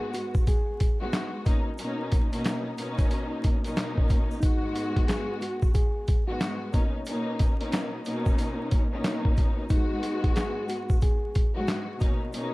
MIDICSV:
0, 0, Header, 1, 4, 480
1, 0, Start_track
1, 0, Key_signature, 5, "minor"
1, 0, Tempo, 659341
1, 1303, Time_signature, 4, 2, 24, 8
1, 9128, End_track
2, 0, Start_track
2, 0, Title_t, "Clean electric guitar"
2, 0, Program_c, 0, 27
2, 0, Note_on_c, 0, 68, 88
2, 78, Note_off_c, 0, 68, 0
2, 101, Note_on_c, 0, 66, 81
2, 318, Note_off_c, 0, 66, 0
2, 349, Note_on_c, 0, 68, 80
2, 713, Note_off_c, 0, 68, 0
2, 744, Note_on_c, 0, 66, 69
2, 820, Note_off_c, 0, 66, 0
2, 3204, Note_on_c, 0, 63, 104
2, 3665, Note_off_c, 0, 63, 0
2, 3699, Note_on_c, 0, 68, 96
2, 3917, Note_off_c, 0, 68, 0
2, 3940, Note_on_c, 0, 66, 74
2, 4157, Note_off_c, 0, 66, 0
2, 4180, Note_on_c, 0, 68, 81
2, 4549, Note_off_c, 0, 68, 0
2, 4568, Note_on_c, 0, 66, 75
2, 4651, Note_off_c, 0, 66, 0
2, 7060, Note_on_c, 0, 63, 102
2, 7513, Note_off_c, 0, 63, 0
2, 7540, Note_on_c, 0, 68, 90
2, 7757, Note_off_c, 0, 68, 0
2, 7780, Note_on_c, 0, 66, 81
2, 7997, Note_off_c, 0, 66, 0
2, 8026, Note_on_c, 0, 68, 82
2, 8392, Note_off_c, 0, 68, 0
2, 8422, Note_on_c, 0, 66, 69
2, 8499, Note_off_c, 0, 66, 0
2, 9128, End_track
3, 0, Start_track
3, 0, Title_t, "String section"
3, 0, Program_c, 1, 48
3, 0, Note_on_c, 1, 44, 113
3, 0, Note_on_c, 1, 56, 109
3, 0, Note_on_c, 1, 59, 101
3, 0, Note_on_c, 1, 66, 123
3, 602, Note_off_c, 1, 44, 0
3, 603, Note_off_c, 1, 56, 0
3, 604, Note_off_c, 1, 59, 0
3, 605, Note_off_c, 1, 66, 0
3, 729, Note_on_c, 1, 44, 105
3, 730, Note_on_c, 1, 56, 91
3, 732, Note_on_c, 1, 59, 80
3, 734, Note_on_c, 1, 66, 102
3, 1053, Note_on_c, 1, 47, 88
3, 1055, Note_on_c, 1, 58, 86
3, 1057, Note_on_c, 1, 61, 81
3, 1059, Note_on_c, 1, 63, 104
3, 1061, Note_off_c, 1, 44, 0
3, 1061, Note_off_c, 1, 56, 0
3, 1063, Note_off_c, 1, 59, 0
3, 1064, Note_off_c, 1, 66, 0
3, 1227, Note_off_c, 1, 47, 0
3, 1229, Note_off_c, 1, 58, 0
3, 1230, Note_off_c, 1, 61, 0
3, 1231, Note_off_c, 1, 63, 0
3, 1303, Note_on_c, 1, 47, 96
3, 1305, Note_on_c, 1, 58, 98
3, 1307, Note_on_c, 1, 61, 91
3, 1308, Note_on_c, 1, 63, 110
3, 1657, Note_off_c, 1, 47, 0
3, 1658, Note_off_c, 1, 58, 0
3, 1659, Note_off_c, 1, 61, 0
3, 1660, Note_off_c, 1, 63, 0
3, 1687, Note_on_c, 1, 47, 107
3, 1690, Note_on_c, 1, 58, 91
3, 1692, Note_on_c, 1, 61, 85
3, 1694, Note_on_c, 1, 63, 101
3, 1998, Note_off_c, 1, 47, 0
3, 2000, Note_off_c, 1, 58, 0
3, 2001, Note_off_c, 1, 61, 0
3, 2002, Note_off_c, 1, 63, 0
3, 2022, Note_on_c, 1, 47, 108
3, 2024, Note_on_c, 1, 58, 100
3, 2026, Note_on_c, 1, 61, 107
3, 2028, Note_on_c, 1, 63, 114
3, 2593, Note_off_c, 1, 47, 0
3, 2594, Note_off_c, 1, 58, 0
3, 2595, Note_off_c, 1, 61, 0
3, 2596, Note_off_c, 1, 63, 0
3, 2653, Note_on_c, 1, 47, 100
3, 2656, Note_on_c, 1, 58, 92
3, 2658, Note_on_c, 1, 61, 85
3, 2660, Note_on_c, 1, 63, 108
3, 3187, Note_off_c, 1, 47, 0
3, 3188, Note_off_c, 1, 58, 0
3, 3190, Note_off_c, 1, 61, 0
3, 3191, Note_off_c, 1, 63, 0
3, 3224, Note_on_c, 1, 44, 111
3, 3227, Note_on_c, 1, 56, 104
3, 3228, Note_on_c, 1, 59, 101
3, 3230, Note_on_c, 1, 66, 122
3, 4441, Note_off_c, 1, 44, 0
3, 4443, Note_off_c, 1, 56, 0
3, 4444, Note_off_c, 1, 59, 0
3, 4445, Note_off_c, 1, 66, 0
3, 4570, Note_on_c, 1, 44, 108
3, 4572, Note_on_c, 1, 56, 90
3, 4573, Note_on_c, 1, 59, 83
3, 4576, Note_on_c, 1, 66, 106
3, 4895, Note_on_c, 1, 47, 92
3, 4897, Note_on_c, 1, 58, 86
3, 4900, Note_on_c, 1, 61, 88
3, 4901, Note_off_c, 1, 44, 0
3, 4901, Note_on_c, 1, 63, 105
3, 4902, Note_off_c, 1, 56, 0
3, 4903, Note_off_c, 1, 59, 0
3, 4904, Note_off_c, 1, 66, 0
3, 5069, Note_off_c, 1, 47, 0
3, 5070, Note_off_c, 1, 58, 0
3, 5071, Note_off_c, 1, 61, 0
3, 5072, Note_off_c, 1, 63, 0
3, 5144, Note_on_c, 1, 47, 94
3, 5146, Note_on_c, 1, 58, 101
3, 5148, Note_on_c, 1, 61, 91
3, 5150, Note_on_c, 1, 63, 115
3, 5498, Note_off_c, 1, 47, 0
3, 5499, Note_off_c, 1, 58, 0
3, 5500, Note_off_c, 1, 61, 0
3, 5501, Note_off_c, 1, 63, 0
3, 5528, Note_on_c, 1, 47, 106
3, 5530, Note_on_c, 1, 58, 96
3, 5532, Note_on_c, 1, 61, 82
3, 5534, Note_on_c, 1, 63, 103
3, 5839, Note_off_c, 1, 47, 0
3, 5840, Note_off_c, 1, 58, 0
3, 5841, Note_off_c, 1, 61, 0
3, 5842, Note_off_c, 1, 63, 0
3, 5861, Note_on_c, 1, 47, 108
3, 5863, Note_on_c, 1, 58, 99
3, 5865, Note_on_c, 1, 61, 102
3, 5867, Note_on_c, 1, 63, 114
3, 6432, Note_off_c, 1, 47, 0
3, 6433, Note_off_c, 1, 58, 0
3, 6434, Note_off_c, 1, 61, 0
3, 6435, Note_off_c, 1, 63, 0
3, 6492, Note_on_c, 1, 47, 100
3, 6494, Note_on_c, 1, 58, 94
3, 6496, Note_on_c, 1, 61, 90
3, 6498, Note_on_c, 1, 63, 111
3, 7026, Note_off_c, 1, 47, 0
3, 7028, Note_off_c, 1, 58, 0
3, 7028, Note_off_c, 1, 61, 0
3, 7030, Note_off_c, 1, 63, 0
3, 7065, Note_on_c, 1, 44, 116
3, 7067, Note_on_c, 1, 56, 111
3, 7069, Note_on_c, 1, 59, 98
3, 7071, Note_on_c, 1, 66, 127
3, 8282, Note_off_c, 1, 44, 0
3, 8283, Note_off_c, 1, 56, 0
3, 8284, Note_off_c, 1, 59, 0
3, 8285, Note_off_c, 1, 66, 0
3, 8407, Note_on_c, 1, 44, 110
3, 8409, Note_on_c, 1, 56, 87
3, 8411, Note_on_c, 1, 59, 80
3, 8413, Note_on_c, 1, 66, 107
3, 8733, Note_on_c, 1, 47, 92
3, 8735, Note_on_c, 1, 58, 84
3, 8737, Note_on_c, 1, 61, 85
3, 8739, Note_on_c, 1, 63, 101
3, 8740, Note_off_c, 1, 44, 0
3, 8741, Note_off_c, 1, 56, 0
3, 8742, Note_off_c, 1, 59, 0
3, 8743, Note_off_c, 1, 66, 0
3, 8907, Note_off_c, 1, 47, 0
3, 8908, Note_off_c, 1, 58, 0
3, 8909, Note_off_c, 1, 61, 0
3, 8911, Note_off_c, 1, 63, 0
3, 8982, Note_on_c, 1, 47, 100
3, 8984, Note_on_c, 1, 58, 96
3, 8985, Note_on_c, 1, 61, 94
3, 8988, Note_on_c, 1, 63, 111
3, 9128, Note_off_c, 1, 47, 0
3, 9128, Note_off_c, 1, 58, 0
3, 9128, Note_off_c, 1, 61, 0
3, 9128, Note_off_c, 1, 63, 0
3, 9128, End_track
4, 0, Start_track
4, 0, Title_t, "Drums"
4, 99, Note_on_c, 9, 82, 53
4, 106, Note_on_c, 9, 42, 68
4, 172, Note_off_c, 9, 82, 0
4, 178, Note_off_c, 9, 42, 0
4, 250, Note_on_c, 9, 82, 52
4, 253, Note_on_c, 9, 36, 103
4, 323, Note_off_c, 9, 82, 0
4, 326, Note_off_c, 9, 36, 0
4, 342, Note_on_c, 9, 82, 68
4, 343, Note_on_c, 9, 42, 84
4, 344, Note_on_c, 9, 36, 101
4, 415, Note_off_c, 9, 82, 0
4, 416, Note_off_c, 9, 36, 0
4, 416, Note_off_c, 9, 42, 0
4, 583, Note_on_c, 9, 42, 76
4, 583, Note_on_c, 9, 82, 47
4, 587, Note_on_c, 9, 36, 87
4, 656, Note_off_c, 9, 42, 0
4, 656, Note_off_c, 9, 82, 0
4, 660, Note_off_c, 9, 36, 0
4, 823, Note_on_c, 9, 82, 64
4, 824, Note_on_c, 9, 38, 114
4, 824, Note_on_c, 9, 42, 86
4, 829, Note_on_c, 9, 39, 96
4, 896, Note_off_c, 9, 38, 0
4, 896, Note_off_c, 9, 42, 0
4, 896, Note_off_c, 9, 82, 0
4, 902, Note_off_c, 9, 39, 0
4, 1061, Note_on_c, 9, 82, 47
4, 1064, Note_on_c, 9, 36, 102
4, 1065, Note_on_c, 9, 42, 76
4, 1133, Note_off_c, 9, 82, 0
4, 1137, Note_off_c, 9, 36, 0
4, 1138, Note_off_c, 9, 42, 0
4, 1296, Note_on_c, 9, 82, 78
4, 1302, Note_on_c, 9, 42, 87
4, 1369, Note_off_c, 9, 82, 0
4, 1375, Note_off_c, 9, 42, 0
4, 1541, Note_on_c, 9, 42, 90
4, 1546, Note_on_c, 9, 36, 91
4, 1549, Note_on_c, 9, 82, 49
4, 1613, Note_off_c, 9, 42, 0
4, 1618, Note_off_c, 9, 36, 0
4, 1621, Note_off_c, 9, 82, 0
4, 1694, Note_on_c, 9, 82, 57
4, 1695, Note_on_c, 9, 42, 58
4, 1767, Note_off_c, 9, 82, 0
4, 1768, Note_off_c, 9, 42, 0
4, 1779, Note_on_c, 9, 42, 79
4, 1785, Note_on_c, 9, 82, 81
4, 1787, Note_on_c, 9, 38, 114
4, 1793, Note_on_c, 9, 39, 91
4, 1852, Note_off_c, 9, 42, 0
4, 1858, Note_off_c, 9, 82, 0
4, 1860, Note_off_c, 9, 38, 0
4, 1866, Note_off_c, 9, 39, 0
4, 2022, Note_on_c, 9, 82, 55
4, 2026, Note_on_c, 9, 42, 70
4, 2095, Note_off_c, 9, 82, 0
4, 2099, Note_off_c, 9, 42, 0
4, 2171, Note_on_c, 9, 82, 54
4, 2173, Note_on_c, 9, 36, 102
4, 2174, Note_on_c, 9, 42, 57
4, 2244, Note_off_c, 9, 82, 0
4, 2246, Note_off_c, 9, 36, 0
4, 2247, Note_off_c, 9, 42, 0
4, 2260, Note_on_c, 9, 82, 69
4, 2263, Note_on_c, 9, 42, 87
4, 2332, Note_off_c, 9, 82, 0
4, 2336, Note_off_c, 9, 42, 0
4, 2502, Note_on_c, 9, 82, 47
4, 2504, Note_on_c, 9, 42, 76
4, 2508, Note_on_c, 9, 36, 88
4, 2575, Note_off_c, 9, 82, 0
4, 2577, Note_off_c, 9, 42, 0
4, 2581, Note_off_c, 9, 36, 0
4, 2653, Note_on_c, 9, 42, 54
4, 2662, Note_on_c, 9, 82, 53
4, 2726, Note_off_c, 9, 42, 0
4, 2734, Note_off_c, 9, 82, 0
4, 2742, Note_on_c, 9, 82, 62
4, 2745, Note_on_c, 9, 38, 113
4, 2745, Note_on_c, 9, 42, 84
4, 2751, Note_on_c, 9, 39, 94
4, 2815, Note_off_c, 9, 82, 0
4, 2818, Note_off_c, 9, 38, 0
4, 2818, Note_off_c, 9, 42, 0
4, 2823, Note_off_c, 9, 39, 0
4, 2894, Note_on_c, 9, 36, 98
4, 2967, Note_off_c, 9, 36, 0
4, 2980, Note_on_c, 9, 82, 47
4, 2985, Note_on_c, 9, 36, 98
4, 2987, Note_on_c, 9, 42, 79
4, 3053, Note_off_c, 9, 82, 0
4, 3058, Note_off_c, 9, 36, 0
4, 3060, Note_off_c, 9, 42, 0
4, 3137, Note_on_c, 9, 82, 49
4, 3210, Note_off_c, 9, 82, 0
4, 3217, Note_on_c, 9, 82, 80
4, 3223, Note_on_c, 9, 36, 107
4, 3223, Note_on_c, 9, 42, 89
4, 3290, Note_off_c, 9, 82, 0
4, 3296, Note_off_c, 9, 36, 0
4, 3296, Note_off_c, 9, 42, 0
4, 3462, Note_on_c, 9, 42, 88
4, 3469, Note_on_c, 9, 82, 47
4, 3535, Note_off_c, 9, 42, 0
4, 3541, Note_off_c, 9, 82, 0
4, 3614, Note_on_c, 9, 36, 92
4, 3616, Note_on_c, 9, 42, 60
4, 3687, Note_off_c, 9, 36, 0
4, 3689, Note_off_c, 9, 42, 0
4, 3700, Note_on_c, 9, 42, 80
4, 3704, Note_on_c, 9, 82, 81
4, 3708, Note_on_c, 9, 38, 112
4, 3714, Note_on_c, 9, 39, 88
4, 3773, Note_off_c, 9, 42, 0
4, 3777, Note_off_c, 9, 82, 0
4, 3781, Note_off_c, 9, 38, 0
4, 3787, Note_off_c, 9, 39, 0
4, 3942, Note_on_c, 9, 82, 53
4, 3947, Note_on_c, 9, 42, 69
4, 4015, Note_off_c, 9, 82, 0
4, 4020, Note_off_c, 9, 42, 0
4, 4091, Note_on_c, 9, 82, 52
4, 4094, Note_on_c, 9, 36, 98
4, 4164, Note_off_c, 9, 82, 0
4, 4167, Note_off_c, 9, 36, 0
4, 4180, Note_on_c, 9, 82, 69
4, 4185, Note_on_c, 9, 36, 104
4, 4185, Note_on_c, 9, 42, 86
4, 4253, Note_off_c, 9, 82, 0
4, 4258, Note_off_c, 9, 36, 0
4, 4258, Note_off_c, 9, 42, 0
4, 4423, Note_on_c, 9, 82, 48
4, 4424, Note_on_c, 9, 42, 74
4, 4429, Note_on_c, 9, 36, 89
4, 4496, Note_off_c, 9, 82, 0
4, 4497, Note_off_c, 9, 42, 0
4, 4501, Note_off_c, 9, 36, 0
4, 4664, Note_on_c, 9, 82, 61
4, 4665, Note_on_c, 9, 38, 115
4, 4665, Note_on_c, 9, 42, 88
4, 4670, Note_on_c, 9, 39, 94
4, 4736, Note_off_c, 9, 82, 0
4, 4737, Note_off_c, 9, 38, 0
4, 4737, Note_off_c, 9, 42, 0
4, 4743, Note_off_c, 9, 39, 0
4, 4901, Note_on_c, 9, 82, 47
4, 4906, Note_on_c, 9, 36, 100
4, 4907, Note_on_c, 9, 42, 76
4, 4973, Note_off_c, 9, 82, 0
4, 4979, Note_off_c, 9, 36, 0
4, 4980, Note_off_c, 9, 42, 0
4, 5137, Note_on_c, 9, 82, 81
4, 5145, Note_on_c, 9, 42, 90
4, 5210, Note_off_c, 9, 82, 0
4, 5218, Note_off_c, 9, 42, 0
4, 5383, Note_on_c, 9, 42, 88
4, 5387, Note_on_c, 9, 36, 91
4, 5389, Note_on_c, 9, 82, 48
4, 5455, Note_off_c, 9, 42, 0
4, 5460, Note_off_c, 9, 36, 0
4, 5462, Note_off_c, 9, 82, 0
4, 5537, Note_on_c, 9, 42, 60
4, 5610, Note_off_c, 9, 42, 0
4, 5623, Note_on_c, 9, 42, 75
4, 5624, Note_on_c, 9, 82, 83
4, 5631, Note_on_c, 9, 38, 109
4, 5636, Note_on_c, 9, 39, 90
4, 5696, Note_off_c, 9, 42, 0
4, 5697, Note_off_c, 9, 82, 0
4, 5703, Note_off_c, 9, 38, 0
4, 5709, Note_off_c, 9, 39, 0
4, 5861, Note_on_c, 9, 82, 56
4, 5868, Note_on_c, 9, 42, 66
4, 5934, Note_off_c, 9, 82, 0
4, 5941, Note_off_c, 9, 42, 0
4, 6012, Note_on_c, 9, 82, 53
4, 6015, Note_on_c, 9, 36, 101
4, 6085, Note_off_c, 9, 82, 0
4, 6087, Note_off_c, 9, 36, 0
4, 6102, Note_on_c, 9, 82, 67
4, 6104, Note_on_c, 9, 42, 83
4, 6175, Note_off_c, 9, 82, 0
4, 6177, Note_off_c, 9, 42, 0
4, 6344, Note_on_c, 9, 42, 76
4, 6345, Note_on_c, 9, 82, 49
4, 6348, Note_on_c, 9, 36, 89
4, 6417, Note_off_c, 9, 42, 0
4, 6417, Note_off_c, 9, 82, 0
4, 6421, Note_off_c, 9, 36, 0
4, 6582, Note_on_c, 9, 82, 62
4, 6583, Note_on_c, 9, 38, 116
4, 6583, Note_on_c, 9, 42, 88
4, 6589, Note_on_c, 9, 39, 97
4, 6655, Note_off_c, 9, 82, 0
4, 6656, Note_off_c, 9, 38, 0
4, 6656, Note_off_c, 9, 42, 0
4, 6662, Note_off_c, 9, 39, 0
4, 6734, Note_on_c, 9, 36, 100
4, 6807, Note_off_c, 9, 36, 0
4, 6820, Note_on_c, 9, 82, 48
4, 6826, Note_on_c, 9, 36, 99
4, 6827, Note_on_c, 9, 42, 73
4, 6893, Note_off_c, 9, 82, 0
4, 6898, Note_off_c, 9, 36, 0
4, 6900, Note_off_c, 9, 42, 0
4, 7056, Note_on_c, 9, 82, 83
4, 7063, Note_on_c, 9, 36, 107
4, 7064, Note_on_c, 9, 42, 90
4, 7129, Note_off_c, 9, 82, 0
4, 7136, Note_off_c, 9, 36, 0
4, 7136, Note_off_c, 9, 42, 0
4, 7301, Note_on_c, 9, 42, 90
4, 7309, Note_on_c, 9, 82, 47
4, 7374, Note_off_c, 9, 42, 0
4, 7381, Note_off_c, 9, 82, 0
4, 7454, Note_on_c, 9, 36, 91
4, 7455, Note_on_c, 9, 42, 58
4, 7527, Note_off_c, 9, 36, 0
4, 7527, Note_off_c, 9, 42, 0
4, 7540, Note_on_c, 9, 42, 78
4, 7543, Note_on_c, 9, 82, 79
4, 7548, Note_on_c, 9, 38, 109
4, 7554, Note_on_c, 9, 39, 89
4, 7613, Note_off_c, 9, 42, 0
4, 7616, Note_off_c, 9, 82, 0
4, 7621, Note_off_c, 9, 38, 0
4, 7627, Note_off_c, 9, 39, 0
4, 7780, Note_on_c, 9, 82, 55
4, 7786, Note_on_c, 9, 42, 68
4, 7853, Note_off_c, 9, 82, 0
4, 7859, Note_off_c, 9, 42, 0
4, 7930, Note_on_c, 9, 82, 51
4, 7934, Note_on_c, 9, 36, 100
4, 8002, Note_off_c, 9, 82, 0
4, 8007, Note_off_c, 9, 36, 0
4, 8019, Note_on_c, 9, 82, 70
4, 8024, Note_on_c, 9, 42, 83
4, 8025, Note_on_c, 9, 36, 99
4, 8092, Note_off_c, 9, 82, 0
4, 8097, Note_off_c, 9, 42, 0
4, 8098, Note_off_c, 9, 36, 0
4, 8261, Note_on_c, 9, 82, 50
4, 8265, Note_on_c, 9, 42, 76
4, 8268, Note_on_c, 9, 36, 89
4, 8334, Note_off_c, 9, 82, 0
4, 8337, Note_off_c, 9, 42, 0
4, 8341, Note_off_c, 9, 36, 0
4, 8502, Note_on_c, 9, 82, 62
4, 8504, Note_on_c, 9, 38, 118
4, 8505, Note_on_c, 9, 42, 87
4, 8510, Note_on_c, 9, 39, 93
4, 8574, Note_off_c, 9, 82, 0
4, 8577, Note_off_c, 9, 38, 0
4, 8577, Note_off_c, 9, 42, 0
4, 8583, Note_off_c, 9, 39, 0
4, 8738, Note_on_c, 9, 82, 50
4, 8745, Note_on_c, 9, 36, 100
4, 8748, Note_on_c, 9, 42, 77
4, 8811, Note_off_c, 9, 82, 0
4, 8818, Note_off_c, 9, 36, 0
4, 8821, Note_off_c, 9, 42, 0
4, 8975, Note_on_c, 9, 82, 80
4, 8984, Note_on_c, 9, 42, 86
4, 9048, Note_off_c, 9, 82, 0
4, 9057, Note_off_c, 9, 42, 0
4, 9128, End_track
0, 0, End_of_file